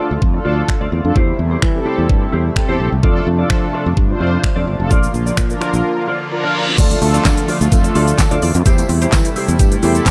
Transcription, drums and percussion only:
0.22 kick
0.69 finger snap, kick
1.16 kick
1.62 finger snap, kick
2.09 kick
2.56 finger snap, kick
3.03 kick
3.50 finger snap, kick
3.97 kick
4.44 finger snap, kick
4.91 kick, shaker
5.03 shaker
5.14 shaker
5.27 shaker
5.37 finger snap, kick, shaker
5.50 shaker
5.61 finger snap, shaker
5.74 shaker
6.78 kick, closed hi-hat, crash, tambourine, shaker
6.90 closed hi-hat, tambourine, shaker
7.02 open hi-hat, shaker
7.14 closed hi-hat, shaker
7.25 kick, snare, clap, closed hi-hat, tambourine, shaker
7.37 closed hi-hat, shaker
7.48 open hi-hat, tambourine, shaker
7.61 closed hi-hat, shaker
7.72 kick, closed hi-hat, tambourine, shaker
7.84 closed hi-hat, shaker
7.95 open hi-hat, tambourine, shaker
8.08 closed hi-hat, shaker
8.19 kick, snare, clap, closed hi-hat, tambourine, shaker
8.31 closed hi-hat, shaker
8.42 open hi-hat, tambourine, shaker
8.55 closed hi-hat, shaker
8.66 kick, closed hi-hat, tambourine, shaker
8.78 closed hi-hat, tambourine, shaker
8.89 open hi-hat, shaker
9.02 closed hi-hat, shaker
9.12 kick, snare, clap, closed hi-hat, tambourine, shaker
9.25 closed hi-hat, shaker
9.36 open hi-hat, tambourine, shaker
9.48 closed hi-hat, shaker
9.59 kick, closed hi-hat, tambourine, shaker
9.72 closed hi-hat, shaker
9.83 open hi-hat, tambourine, shaker
9.95 closed hi-hat, tambourine, shaker
10.06 kick, snare, clap, closed hi-hat, tambourine, shaker

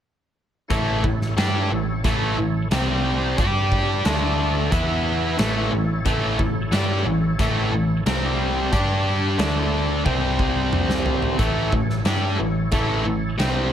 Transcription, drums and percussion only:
0.70 kick, closed hi-hat
1.04 kick
1.22 snare
1.38 snare, closed hi-hat
2.04 kick, closed hi-hat
2.71 snare, closed hi-hat
3.38 kick, closed hi-hat
3.72 kick
4.05 snare, closed hi-hat
4.72 kick, closed hi-hat
5.39 snare, closed hi-hat
6.06 kick, closed hi-hat
6.39 kick
6.72 snare, closed hi-hat
7.39 kick, closed hi-hat
8.06 snare, closed hi-hat
8.73 kick, closed hi-hat
9.39 snare, closed hi-hat
10.06 kick
10.39 kick
10.73 mid tom
10.90 snare
11.06 floor tom
11.22 floor tom
11.39 kick, closed hi-hat
11.72 kick
11.90 snare
12.05 snare, closed hi-hat
12.72 kick, closed hi-hat
13.39 snare, closed hi-hat

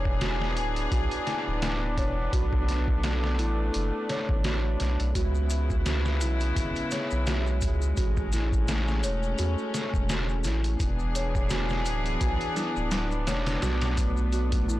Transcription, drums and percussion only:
0.05 kick
0.21 snare, closed hi-hat
0.42 snare
0.57 closed hi-hat
0.76 closed hi-hat
0.92 kick, closed hi-hat
1.11 closed hi-hat
1.27 snare, closed hi-hat
1.62 snare, closed hi-hat
1.98 kick, closed hi-hat
2.33 kick, closed hi-hat
2.53 kick
2.68 snare, closed hi-hat
2.88 kick
3.03 snare, closed hi-hat
3.24 snare
3.39 closed hi-hat
3.74 closed hi-hat
4.09 snare, closed hi-hat
4.29 kick
4.44 snare, closed hi-hat
4.80 snare, closed hi-hat
5.00 closed hi-hat
5.15 kick, closed hi-hat, maracas
5.35 maracas
5.50 closed hi-hat, maracas
5.70 kick, maracas
5.86 snare, closed hi-hat, maracas
6.05 snare, maracas
6.21 closed hi-hat, maracas
6.40 closed hi-hat, maracas
6.56 kick, closed hi-hat, maracas
6.76 closed hi-hat, maracas
6.91 snare, closed hi-hat, maracas
7.11 maracas
7.26 snare, closed hi-hat, maracas
7.47 maracas
7.61 kick, closed hi-hat, maracas
7.82 maracas
7.97 kick, closed hi-hat, maracas
8.17 kick, maracas
8.32 snare, closed hi-hat, maracas
8.53 kick, maracas
8.68 snare, closed hi-hat, maracas
8.88 snare, maracas
9.03 closed hi-hat, maracas
9.23 maracas
9.38 closed hi-hat, maracas
9.58 maracas
9.74 snare, closed hi-hat, maracas
9.94 kick, maracas
10.09 snare, closed hi-hat, maracas
10.29 maracas
10.44 snare, closed hi-hat, maracas
10.64 closed hi-hat, maracas
10.80 kick, closed hi-hat, maracas
10.99 maracas
11.15 closed hi-hat, maracas
11.35 kick, maracas
11.50 snare, closed hi-hat, maracas
11.69 snare, maracas
11.85 closed hi-hat, maracas
12.06 closed hi-hat, maracas
12.21 kick, closed hi-hat, maracas
12.41 closed hi-hat, maracas
12.56 snare, closed hi-hat, maracas
12.76 maracas
12.91 snare, closed hi-hat, maracas
13.11 maracas
13.27 snare, closed hi-hat, maracas
13.46 snare, closed hi-hat, maracas
13.62 snare, closed hi-hat, maracas
13.81 snare, closed hi-hat, maracas
13.97 kick, closed hi-hat, maracas
14.17 maracas
14.32 closed hi-hat, maracas
14.52 kick, closed hi-hat, maracas
14.69 maracas

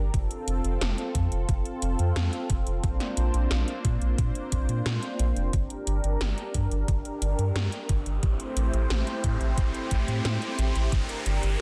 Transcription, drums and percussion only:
0.14 kick, closed hi-hat
0.31 closed hi-hat
0.48 closed hi-hat
0.64 closed hi-hat
0.81 snare, closed hi-hat
0.98 closed hi-hat
1.15 kick, closed hi-hat
1.32 closed hi-hat
1.49 kick, closed hi-hat
1.65 closed hi-hat
1.82 closed hi-hat
1.99 closed hi-hat
2.16 snare, closed hi-hat
2.33 closed hi-hat
2.50 kick, closed hi-hat
2.67 closed hi-hat
2.84 kick, closed hi-hat
3.00 snare, closed hi-hat
3.17 closed hi-hat
3.34 closed hi-hat
3.51 snare, closed hi-hat
3.68 closed hi-hat
3.85 kick, closed hi-hat
4.02 closed hi-hat
4.18 kick, closed hi-hat
4.35 closed hi-hat
4.52 kick, closed hi-hat
4.69 closed hi-hat
4.86 snare, closed hi-hat
5.03 closed hi-hat
5.19 closed hi-hat
5.37 closed hi-hat
5.53 kick, closed hi-hat
5.70 closed hi-hat
5.87 closed hi-hat
6.04 closed hi-hat
6.21 snare, closed hi-hat
6.38 closed hi-hat
6.54 kick, closed hi-hat
6.71 closed hi-hat
6.88 kick, closed hi-hat
7.05 closed hi-hat
7.22 closed hi-hat
7.39 closed hi-hat
7.56 snare, closed hi-hat
7.72 closed hi-hat
7.89 kick, closed hi-hat
8.06 closed hi-hat
8.23 kick, closed hi-hat
8.40 closed hi-hat
8.57 closed hi-hat
8.74 closed hi-hat
8.90 snare, closed hi-hat
9.07 closed hi-hat
9.24 kick, closed hi-hat
9.41 closed hi-hat
9.58 kick, closed hi-hat
9.74 closed hi-hat
9.91 kick, closed hi-hat
10.08 closed hi-hat
10.25 snare, closed hi-hat
10.42 closed hi-hat
10.59 closed hi-hat
10.75 closed hi-hat
10.92 kick, closed hi-hat
11.09 closed hi-hat
11.26 closed hi-hat
11.43 closed hi-hat

